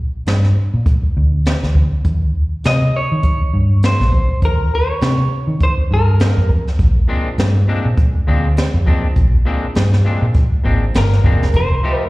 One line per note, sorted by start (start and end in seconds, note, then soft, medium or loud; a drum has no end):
0.26 0.52 G2 medium
0.26 snare loud
0.26 closed hi-hat medium
0.44 snare soft
0.74 0.85 A#2 medium
0.86 kick loud
0.86 closed hi-hat medium
1.03 muted fingered electric bass stroke soft
1.17 1.56 D2 loud
1.45 snare loud
1.45 closed hi-hat medium
1.63 1.88 D2 medium
1.63 snare soft
1.75 kick medium
2.05 2.30 D#2 medium
2.05 kick loud
2.05 closed hi-hat medium
2.64 2.90 C3 loud
2.64 2.96 D#5 loud
2.64 snare loud
2.64 closed hi-hat medium
2.96 3.85 C#5 medium
3.12 3.22 D#3 medium
3.23 kick loud
3.23 closed hi-hat medium
3.41 muted fingered electric bass stroke soft
3.54 3.93 G2 medium
3.83 4.40 C5 medium
3.83 snare loud
3.83 closed hi-hat medium
4.00 4.25 A#1 medium
4.00 snare soft
4.12 kick medium
4.42 4.67 D#2 loud
4.42 4.74 A#4 medium
4.42 kick medium
4.42 closed hi-hat medium
4.75 5.63 C#5 medium
5.01 5.27 C3 loud
5.01 snare loud
5.01 closed hi-hat medium
5.47 5.59 D#3 medium
5.60 5.71 C5 medium
5.60 kick loud
5.60 closed hi-hat medium
5.78 muted fingered electric bass stroke soft
5.91 6.30 G2 medium
5.91 6.47 A#4 medium
6.20 snare loud
6.20 closed hi-hat medium
6.37 6.62 F2 medium
6.49 kick medium
6.67 snare soft
6.79 7.05 A#1 medium
6.79 kick loud
6.79 closed hi-hat medium
7.08 7.28 A#2 medium
7.08 7.28 G#3 medium
7.08 7.28 C4 loud
7.08 7.29 D4 loud
7.38 7.64 G2 medium
7.38 snare loud
7.38 closed hi-hat medium
7.68 7.87 A#2 medium
7.68 7.88 G#3 medium
7.68 7.88 C4 loud
7.68 7.88 D4 loud
7.85 7.96 A#2 medium
7.97 kick loud
7.97 closed hi-hat medium
8.15 muted fingered electric bass stroke soft
8.27 8.67 D2 medium
8.27 8.47 A#2 medium
8.27 8.47 G#3 medium
8.27 8.47 C4 loud
8.27 8.47 D4 loud
8.57 snare loud
8.57 closed hi-hat medium
8.74 8.99 F2 medium
8.86 9.06 A#2 medium
8.86 9.06 G#3 medium
8.86 9.06 C4 medium
8.86 9.06 D4 medium
8.86 kick medium
9.16 9.42 A#1 loud
9.16 kick loud
9.16 closed hi-hat medium
9.45 9.65 A#2 medium
9.45 9.65 G#3 loud
9.45 9.66 C4 loud
9.45 9.66 D4 medium
9.75 10.01 G2 medium
9.75 snare loud
9.75 closed hi-hat medium
9.93 snare soft
10.05 10.24 A#2 medium
10.05 10.25 G#3 medium
10.05 10.25 C4 medium
10.05 10.25 D4 medium
10.22 10.33 A#2 medium
10.34 kick loud
10.34 closed hi-hat medium
10.52 muted fingered electric bass stroke soft
10.64 10.92 G#1 medium
10.64 10.83 A#2 medium
10.64 10.84 G#3 medium
10.64 10.84 C4 medium
10.64 10.84 D4 medium
10.94 11.21 G1 medium
10.94 11.51 A#4 medium
10.94 snare loud
10.94 closed hi-hat medium
11.13 snare soft
11.24 11.51 F1 medium
11.24 11.43 A#2 medium
11.24 11.44 G#3 medium
11.24 11.44 C4 medium
11.24 11.44 D4 medium
11.24 kick medium
11.42 snare soft
11.54 11.79 F1 loud
11.54 11.98 C5 medium
11.54 kick medium
11.54 closed hi-hat medium
11.83 12.03 F3 medium
11.83 12.03 A3 medium
11.83 12.03 D#4 medium
11.83 12.03 G4 medium
11.98 12.09 A#4 medium